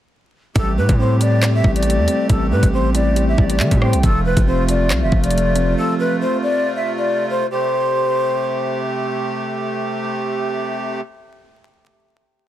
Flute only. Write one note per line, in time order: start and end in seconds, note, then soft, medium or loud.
0.55 0.72 A4 loud
0.77 0.94 B4 medium
0.99 1.15 C5 medium
1.21 1.52 D5 medium
1.54 1.70 E5 medium
1.76 2.26 D5 medium
2.29 2.46 A4 medium
2.51 2.68 B4 medium
2.73 2.89 C5 medium
2.95 3.26 D5 medium
3.28 3.44 E5 medium
3.50 3.80 D5 medium
3.81 3.98 C5 medium
4.03 4.20 A4 loud
4.25 4.42 B4 medium
4.47 4.63 C5 medium
4.69 5.00 D5 medium
5.02 5.18 E5 medium
5.23 5.74 D5 medium
5.77 5.94 A4 loud
5.99 6.16 B4 medium
6.21 6.37 C5 medium
6.43 6.74 D5 medium
6.76 6.92 E5 medium
6.98 7.28 D5 medium
7.29 7.46 C5 medium
7.51 8.78 C5 loud